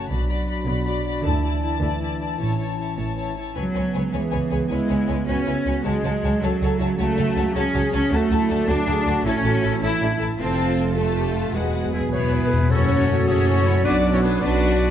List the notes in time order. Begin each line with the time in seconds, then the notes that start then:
Already playing: F#4 C#5 A5
0.09 B1 B2 F#4 D5 B5
0.13 F#3 D4
0.29 F#4 D5 B5
0.48 F#4 D5 B5
0.66 B1 B2 F#4 D5 B5
0.85 F#4 D5 B5
1.05 F#4 D5 B5
1.24 D2 D3 E3 E4 D5 A5
1.43 E4 D5 A5
1.62 E4 D5 A5
1.81 D2 D3 E4 D5 A5
2.01 E4 D5 A5
2.20 E4 D5 A5
2.40 A1 A2 C#4 E4 C#5 A5
2.58 E4 C#5 A5
2.79 E4 C#5 A5
2.97 A1 A2 E4 C#5 A5
3.16 E4 C#5 A5
3.37 E4 C#5 A5
3.55 C#2 C#3 F#3 B3 B4 C#5 G#5
3.74 C#2 B4 C#5 G#5
3.94 C#2 B4 C#5 G#5
4.12 C#2 E3 G#4 B4 C#5 G#5
4.31 C#2 B4 C#5 G#5
4.50 C#2 B4 C#5 G#5
4.68 C#2 G#3 E4 B4 C#5 G#5
4.89 C#2 B4 C#5 G#5
5.08 C#2 B4 C#5 G#5
5.27 C#2 C#4 F#4 B4 C#5 G#5
5.46 C#2 E4 B4 C#5 G#5
5.66 C#2 F#4 B4 C#5 G#5
5.84 C#2 C#3 F#3 G#3 F#4 G#4 C#5 A5
6.04 C#2 F#4 C#5 A5
6.23 C#2 F#4 C#5 A5
6.41 C#2 F#3 F#4 A4 C#5 A5
6.60 C#2 F#4 A4 C#5 A5
6.79 C#2 E4 F#4 C#5 A5
6.98 C#2 A3 F#4 C#5 A5
7.17 C#2 F#4 C#5 A5
7.36 C#2 F#4 C#5 A5
7.55 C#2 C#4 F#4 G#4 C#5 A5
7.74 C#2 F#4 C#5 A5
7.92 C#2 C#4 F#4 C#5 A5
8.11 D2 F#3 A3 F#4 A4 A5
8.31 D2 E4 F#4 A4 A5
8.48 D2 D4 F#4 A4 A5
8.68 D2 D4 F#4 A4 A5
8.86 D2 F#4 G#4 A4 A5
9.06 D2 F#4 A4 A5
9.25 A1 A2 E3 C#4 E4 A4 A5
9.44 A1 E4 F#4 A4 A5
9.63 A1 E4 A4 A5
9.82 A1 C#4 E4 A4 A5
10.01 A1 D4 E4 A4 A5
10.19 A1 E4 A4 A5
10.38 F1 F3 A3 C4 F4 A4 A5
10.96 A3 F4 A4 A5
11.17 G4
11.37 F4
11.54 E1 E2 F#3 G#3 B3 F#4 G#4 B4 F#5
11.62 E2
11.70 E2
11.77 E2
11.85 E2
11.92 E2 G#3 B3 E4 G#4
12.00 E2
12.08 E2 B4
12.12 E2 B3 E4 G#4 C#5
12.23 E2
12.31 E2 B4
12.38 E2
12.46 E2
12.51 E2 G#4
12.60 E2
12.69 F#1 F#2 F#3 A3 C#4 F#4 A4 C#5
13.26 F#1 F#2 C#4 F#4 G#4 A4 C#5
13.48 F#4
13.66 E4
13.83 B1 B3 D4 F#4 B4 D5
14.12 C#4 E4 A4 C#5
14.22 B3 D4 G#4 B4
14.40 B1 D4 F#4 B4 D5